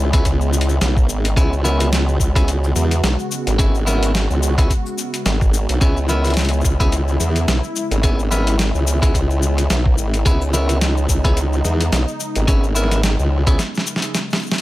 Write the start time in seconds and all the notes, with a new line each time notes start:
Already playing: C#2 C#3 G#3 B3 E4
0.13 B3 C#4 E4 G#4, kick, closed hi-hat, shaker
0.25 C#2, kick, closed hi-hat, shaker
0.41 shaker
0.53 shaker
0.61 closed hi-hat
0.69 shaker
0.81 B1, snare, closed hi-hat, shaker
0.97 kick, shaker
1.09 G#1, shaker
1.25 closed hi-hat, shaker
1.36 C#2 B3 C#4 E4 F#4 G#4, kick, closed hi-hat, shaker
1.53 shaker
1.64 B3 C#4 E4 A#4, snare, shaker
1.80 closed hi-hat, shaker
1.93 snare, closed hi-hat, shaker
2.08 shaker
2.20 C#2, kick, shaker
2.35 B3 C#4 E4 G#4, kick, closed hi-hat, shaker
2.48 closed hi-hat, shaker
2.64 shaker
2.75 E2, snare, shaker
2.91 closed hi-hat, shaker
3.03 B1, snare, closed hi-hat, shaker
3.19 shaker
3.31 shaker
3.47 G#1, closed hi-hat, shaker
3.59 B3 C#4 E4 G#4, kick, closed hi-hat, shaker
3.75 shaker
3.86 B3 C#4 E4 A#4, snare, shaker
4.03 closed hi-hat, shaker
4.15 snare, closed hi-hat, shaker
4.30 C#2, shaker
4.43 shaker
4.58 B3 C#4 E4 G#4, kick, closed hi-hat, shaker
4.70 kick, closed hi-hat, shaker
4.86 shaker
4.98 shaker
5.14 closed hi-hat, shaker
5.26 G#1, snare, closed hi-hat, shaker
5.41 kick, shaker
5.54 shaker
5.69 B1, closed hi-hat, shaker
5.81 C#2 B3 C#4 E4 G#4, kick, closed hi-hat, shaker
5.97 shaker
6.09 B3 C#4 E4 A#4, snare, shaker
6.25 closed hi-hat, shaker
6.27 closed hi-hat
6.30 closed hi-hat
6.34 snare, closed hi-hat
6.37 closed hi-hat, shaker
6.41 closed hi-hat
6.45 closed hi-hat
6.49 closed hi-hat
6.53 shaker
6.61 C#2, kick, shaker
6.65 shaker
6.80 B3 C#4 E4 G#4, kick, closed hi-hat, shaker
6.92 closed hi-hat, shaker
7.08 shaker
7.20 E2, snare, shaker
7.36 closed hi-hat, shaker
7.48 B1, snare, closed hi-hat, shaker
7.64 shaker
7.76 shaker
7.91 G#1, closed hi-hat, shaker
8.03 B3 C#4 E4 G#4, kick, closed hi-hat, shaker
8.19 shaker
8.31 B3 C#4 E4 A#4, snare, shaker
8.47 closed hi-hat, shaker
8.59 snare, closed hi-hat, shaker
8.75 C#2, shaker
8.87 shaker
9.02 B3 C#4 E4 G#4, kick, closed hi-hat, shaker
9.14 C#2, kick, closed hi-hat, shaker
9.30 shaker
9.42 shaker
9.58 closed hi-hat, shaker
9.70 B1, snare, closed hi-hat, shaker
9.86 kick
9.98 G#1, shaker
10.14 closed hi-hat, shaker
10.25 C#2 B3 C#4 D#4 E4 G#4, kick, closed hi-hat, shaker
10.41 shaker
10.53 B3 C#4 E4 A#4, snare, shaker
10.69 closed hi-hat, shaker
10.81 snare, closed hi-hat, shaker
10.97 shaker
11.09 C#2, kick, shaker
11.24 B3 C#4 E4 G#4, kick, closed hi-hat
11.37 closed hi-hat, shaker
11.53 shaker
11.65 E2, snare, shaker
11.81 closed hi-hat, shaker
11.92 B1, snare, closed hi-hat, shaker
12.08 shaker
12.20 shaker
12.36 G#1, closed hi-hat, shaker
12.48 B3 C#4 E4 G#4, kick, closed hi-hat, shaker
12.64 shaker
12.75 B3 C#4 E4 A#4, shaker
12.84 snare
12.91 snare, closed hi-hat, shaker
13.03 snare, closed hi-hat, shaker
13.19 C#2, shaker
13.47 B3 C#4 E4 G#4, kick, closed hi-hat, shaker
13.59 snare, closed hi-hat, shaker
13.75 snare, shaker
13.87 shaker
13.96 snare
14.02 closed hi-hat, shaker
14.15 snare, closed hi-hat, shaker
14.30 snare, shaker
14.33 shaker
14.36 shaker
14.39 shaker
14.42 shaker
14.46 shaker
14.50 snare, shaker
14.54 shaker
14.58 closed hi-hat, shaker